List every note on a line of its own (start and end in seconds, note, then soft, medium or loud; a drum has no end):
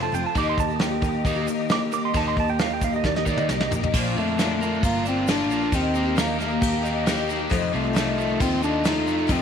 0.00 0.11 F1 medium
0.00 0.12 F2 medium
0.00 0.12 C3 medium
0.00 0.10 F3 soft
0.00 0.11 A3 medium
0.00 0.12 C4 medium
0.00 0.12 F4 medium
0.00 0.32 F4 medium
0.00 0.32 C5 medium
0.00 0.32 A5 medium
0.00 0.13 A5 loud
0.12 0.24 F1 loud
0.12 0.34 F2 medium
0.12 0.34 C3 medium
0.12 0.35 F3 medium
0.12 0.35 A3 medium
0.12 0.36 C4 medium
0.12 0.37 F4 medium
0.12 0.25 G5 medium
0.12 open hi-hat medium
0.12 shaker medium
0.26 0.37 A5 medium
0.35 1.21 D#2 medium
0.35 0.69 D#3 medium
0.35 0.70 A#3 medium
0.35 0.70 D#4 medium
0.35 3.90 G4 medium
0.35 0.67 G4 medium
0.35 3.90 D#5 medium
0.35 3.90 A#5 medium
0.35 0.48 D6 medium
0.35 kick loud
0.35 open hi-hat medium
0.35 shaker medium
0.49 0.59 C6 medium
0.57 0.79 D#3 medium
0.57 0.79 A#3 medium
0.57 0.81 A5 loud
0.57 kick medium
0.57 open hi-hat medium
0.57 shaker medium
0.68 0.80 D#4 medium
0.68 0.80 G4 medium
0.68 shaker soft
0.73 0.79 A#3 soft
0.79 0.91 D#3 medium
0.79 0.92 A#3 medium
0.79 0.91 D#4 medium
0.79 0.89 G4 medium
0.79 1.25 G5 loud
0.79 snare loud
0.79 open hi-hat medium
0.79 shaker medium
0.91 1.01 A#3 soft
0.91 1.02 D#4 soft
0.91 1.02 G4 medium
1.01 1.36 D#3 medium
1.01 1.36 A#3 medium
1.01 1.37 D#4 medium
1.01 1.35 G4 medium
1.01 kick medium
1.01 open hi-hat medium
1.01 shaker medium
1.25 1.46 D#2 loud
1.25 1.47 D#3 medium
1.25 1.47 A#3 loud
1.25 1.47 D#4 loud
1.25 kick medium
1.25 open hi-hat medium
1.25 shaker medium
1.36 1.47 A#3 medium
1.36 1.49 D#4 medium
1.36 1.47 G4 medium
1.47 1.70 D#3 medium
1.47 1.70 A#3 medium
1.47 1.71 D#4 medium
1.47 open hi-hat medium
1.47 shaker loud
1.51 1.72 G4 medium
1.69 1.82 D#3 medium
1.69 1.82 A#3 medium
1.69 1.82 D#4 medium
1.69 1.80 G4 loud
1.69 1.82 D6 loud
1.69 snare loud
1.69 open hi-hat medium
1.69 shaker medium
1.81 1.93 A#3 soft
1.81 1.94 D#4 medium
1.81 1.93 G4 medium
1.91 2.15 D#3 medium
1.91 2.15 A#3 medium
1.91 2.16 D#4 medium
1.91 2.04 D6 loud
1.91 open hi-hat medium
1.91 shaker medium
1.96 2.16 G4 medium
2.05 2.15 C6 loud
2.14 3.00 D#2 loud
2.14 2.49 D#3 medium
2.14 2.49 A#3 medium
2.14 2.49 D#4 medium
2.14 2.47 G4 loud
2.14 2.27 A5 loud
2.14 kick loud
2.14 open hi-hat medium
2.14 shaker medium
2.28 2.38 C6 loud
2.37 2.57 D#3 medium
2.37 2.58 A#3 medium
2.37 2.49 A5 loud
2.37 kick medium
2.37 open hi-hat medium
2.48 2.58 A#3 soft
2.48 2.59 D#4 medium
2.48 2.60 G4 medium
2.48 2.60 G5 loud
2.48 shaker soft
2.59 2.70 D#3 medium
2.59 2.71 A#3 medium
2.59 2.71 D#4 medium
2.59 2.69 G4 medium
2.59 2.71 F5 loud
2.59 snare loud
2.59 open hi-hat medium
2.59 shaker medium
2.70 2.83 A#3 soft
2.70 2.83 D#4 medium
2.70 2.81 G4 medium
2.70 2.83 G5 loud
2.81 2.93 D#3 medium
2.81 2.94 A#3 medium
2.81 2.94 D#4 medium
2.81 2.94 F5 loud
2.81 kick medium
2.81 open hi-hat medium
2.81 shaker loud
2.86 2.92 G4 medium
2.93 3.17 A#3 soft
2.93 3.16 D#4 soft
2.93 3.14 G4 medium
2.93 3.05 D#5 loud
2.93 shaker soft
3.04 3.25 D#2 loud
3.04 3.24 D#3 medium
3.04 3.25 A#3 medium
3.04 3.16 D5 loud
3.04 kick medium
3.04 snare medium
3.04 shaker medium
3.15 3.28 A#3 soft
3.15 3.28 D#4 medium
3.15 3.26 G4 medium
3.15 3.27 D#5 loud
3.15 snare medium
3.26 3.47 D#2 medium
3.26 3.48 D#3 medium
3.26 3.48 A#3 medium
3.26 3.49 D5 loud
3.26 kick medium
3.26 shaker medium
3.30 3.49 D#4 medium
3.30 3.50 G4 medium
3.37 mid tom medium
3.37 shaker soft
3.49 3.69 C2 medium
3.49 3.60 D#3 medium
3.49 3.60 A#3 medium
3.49 3.61 D#4 medium
3.49 3.59 G4 medium
3.49 3.71 D#5 loud
3.49 snare medium
3.49 shaker medium
3.60 3.73 A#3 soft
3.60 3.72 D#4 soft
3.60 3.71 G4 medium
3.60 snare medium
3.71 3.91 A#1 medium
3.71 3.94 D#3 medium
3.71 3.94 A#3 medium
3.71 floor tom loud
3.71 shaker medium
3.75 3.95 D#4 medium
3.75 3.96 G4 medium
3.83 floor tom medium
3.83 shaker soft
3.94 4.15 A#1 loud
3.94 4.16 A#2 medium
3.94 4.16 F3 medium
3.94 4.15 F3 medium
3.94 4.16 A#3 medium
3.94 4.17 D4 medium
3.94 5.71 F4 medium
3.94 4.17 F4 medium
3.94 5.71 D5 medium
3.94 7.48 A#5 medium
3.94 kick loud
3.94 crash loud
3.94 crash medium
3.94 shaker medium
4.16 4.79 F2 medium
4.16 4.37 D3 medium
4.16 4.28 F3 medium
4.16 4.79 A3 loud
4.16 4.28 A#3 medium
4.16 4.28 D4 medium
4.20 4.26 F4 medium
4.27 4.39 D4 medium
4.27 4.38 F4 medium
4.32 4.39 A#3 medium
4.38 4.61 A#2 medium
4.38 5.50 D3 medium
4.38 4.60 F3 medium
4.38 4.61 A#3 medium
4.38 4.62 D4 medium
4.38 4.62 F4 medium
4.38 snare loud
4.38 crash medium
4.38 shaker loud
4.61 4.72 F3 medium
4.61 4.72 A#3 medium
4.61 4.73 D4 medium
4.61 4.71 F4 medium
4.61 shaker medium
4.72 4.96 A#3 soft
4.72 4.95 D4 medium
4.72 4.94 F4 medium
4.83 5.50 G1 loud
4.83 5.04 A#3 loud
4.83 5.26 F4 medium
4.83 kick loud
4.83 crash medium
4.83 shaker medium
4.95 5.07 A#3 medium
4.95 5.07 D4 medium
4.95 5.06 F4 medium
5.04 5.27 F3 medium
5.04 5.28 A#3 medium
5.04 5.32 C4 loud
5.04 5.72 D4 medium
5.04 shaker medium
5.09 5.29 D4 medium
5.09 5.30 F4 medium
5.27 5.50 A#2 medium
5.27 5.49 F3 medium
5.27 5.50 A#3 medium
5.27 5.51 D4 medium
5.27 5.76 D4 loud
5.27 5.51 F4 medium
5.27 snare loud
5.27 crash medium
5.27 shaker medium
5.50 5.71 A#1 medium
5.50 5.61 F3 medium
5.50 5.62 A#3 medium
5.50 5.62 D4 medium
5.50 5.60 F4 medium
5.50 shaker medium
5.61 5.73 A#3 soft
5.61 5.73 D4 soft
5.61 5.72 F4 medium
5.72 6.57 D#2 loud
5.72 5.93 D#3 medium
5.72 5.94 A#3 medium
5.72 6.18 C4 loud
5.72 5.94 D#4 medium
5.72 7.50 G4 medium
5.72 5.96 G4 medium
5.72 9.42 D#5 medium
5.72 kick loud
5.72 crash medium
5.72 shaker loud
5.94 6.05 D#3 medium
5.94 6.06 A#3 medium
5.94 6.05 D#4 medium
5.94 6.03 G4 medium
5.94 shaker medium
6.05 6.15 A#3 soft
6.05 6.16 D#4 medium
6.05 6.16 G4 medium
6.16 6.37 D#3 medium
6.16 6.39 A#3 medium
6.16 6.39 A#3 loud
6.16 6.39 D#4 medium
6.16 6.40 G4 medium
6.16 snare loud
6.16 crash medium
6.16 shaker loud
6.38 6.50 D#3 medium
6.38 7.25 A#3 medium
6.38 6.51 A#3 medium
6.38 6.50 D#4 medium
6.38 6.49 G4 medium
6.38 snare soft
6.38 shaker medium
6.50 6.74 A#3 soft
6.50 6.73 D#4 medium
6.50 6.71 G4 medium
6.61 7.47 D#2 loud
6.61 7.05 G4 medium
6.61 kick loud
6.61 crash medium
6.61 shaker medium
6.72 6.83 A#3 soft
6.72 6.84 D#4 medium
6.72 6.84 G4 medium
6.83 7.05 D#3 medium
6.83 7.06 A#3 medium
6.83 7.07 D#4 medium
6.83 7.07 G4 medium
6.83 shaker medium
7.06 7.26 D#3 medium
7.06 7.28 A#3 medium
7.06 7.29 D#4 medium
7.06 7.30 G4 medium
7.06 snare loud
7.06 crash medium
7.06 shaker medium
7.27 7.39 D#3 medium
7.27 7.40 A#3 medium
7.27 7.40 D#4 medium
7.27 7.38 G4 medium
7.27 shaker medium
7.39 7.50 A#3 soft
7.39 7.50 D#4 soft
7.39 7.51 G4 medium
7.50 7.72 F2 medium
7.50 7.72 F2 loud
7.50 7.73 C3 medium
7.50 7.71 D#3 medium
7.50 7.72 F3 loud
7.50 7.72 A3 medium
7.50 7.73 D#4 medium
7.50 7.73 F4 medium
7.50 9.42 F4 medium
7.50 9.42 A5 medium
7.50 kick loud
7.50 crash medium
7.50 shaker medium
7.73 8.36 C2 medium
7.73 8.84 C3 medium
7.73 7.84 D#3 medium
7.73 7.84 A3 medium
7.73 8.43 A3 loud
7.73 7.83 D#4 medium
7.73 7.82 F4 medium
7.83 7.93 D#3 soft
7.83 7.93 A3 medium
7.83 7.95 D#4 medium
7.83 7.95 F4 medium
7.93 8.16 F2 medium
7.93 8.17 C3 medium
7.93 8.15 D#3 medium
7.93 8.17 A3 medium
7.93 8.17 D#4 medium
7.93 8.18 F4 medium
7.93 snare loud
7.93 crash medium
7.93 shaker medium
8.16 8.28 D#3 medium
8.16 8.29 A3 medium
8.16 8.28 D#4 medium
8.16 8.26 F4 medium
8.16 shaker medium
8.27 8.52 D#3 medium
8.27 8.51 A3 medium
8.27 8.50 D#4 medium
8.27 8.49 F4 medium
8.40 9.07 D#2 loud
8.40 8.63 C4 loud
8.40 8.85 F4 medium
8.40 kick loud
8.40 crash medium
8.40 shaker medium
8.50 8.60 D#3 soft
8.50 8.61 A3 medium
8.50 8.62 D#4 soft
8.50 8.62 F4 medium
8.61 8.83 D#3 medium
8.61 8.84 A3 medium
8.61 8.84 D4 loud
8.61 8.85 D#4 medium
8.61 8.85 F4 medium
8.61 shaker medium
8.84 9.06 F2 medium
8.84 9.07 C3 medium
8.84 9.05 D#3 medium
8.84 9.06 A3 medium
8.84 9.07 D#4 medium
8.84 9.33 D#4 loud
8.84 9.08 F4 medium
8.84 snare loud
8.84 crash medium
8.84 shaker medium
9.06 9.28 F2 medium
9.06 9.18 D#3 medium
9.06 9.18 A3 medium
9.06 9.18 D#4 medium
9.06 9.16 F4 medium
9.06 shaker medium
9.17 9.27 D#3 soft
9.17 9.28 A3 soft
9.17 9.28 D#4 medium
9.17 9.29 F4 medium
9.27 9.42 F2 medium
9.27 9.42 F2 loud
9.27 9.42 C3 medium
9.27 9.42 D#3 medium
9.27 9.42 A3 loud
9.27 9.42 D#4 medium
9.27 9.42 F4 medium
9.27 kick loud
9.27 crash medium
9.27 shaker loud
9.31 9.42 F2 medium
9.31 9.42 C4 loud